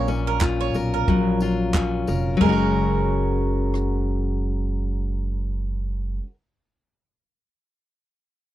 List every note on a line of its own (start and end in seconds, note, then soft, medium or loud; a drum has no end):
0.00 0.71 A#1 loud
0.00 2.37 A#2 medium
0.00 1.08 F#3 medium
0.00 0.41 F4 medium
0.00 0.75 A#4 medium
0.08 1.74 C#4 medium
0.08 tambourine medium
0.27 0.41 A#4 medium
0.41 1.41 F4 medium
0.41 kick loud
0.41 clap loud
0.61 0.75 C#5 medium
0.74 1.06 B1 medium
0.74 2.07 A#4 medium
0.74 tambourine medium
0.94 1.39 A#4 medium
1.08 2.04 A#1 loud
1.08 2.37 F#3 medium
1.08 kick loud
1.40 2.49 F4 medium
1.40 tambourine medium
1.74 2.45 C#4 medium
1.74 kick loud
1.74 clap loud
2.07 2.39 F1 medium
2.07 2.52 A#4 medium
2.07 tambourine medium
2.37 6.18 F#1 medium
2.37 6.18 F#3 medium
2.37 4.37 A#4 medium
2.37 crash medium
2.41 6.23 G#3 medium
2.41 kick loud
2.46 6.27 C#4 medium
2.46 6.30 F#4 medium
2.52 6.34 A#4 medium
3.74 cross-stick medium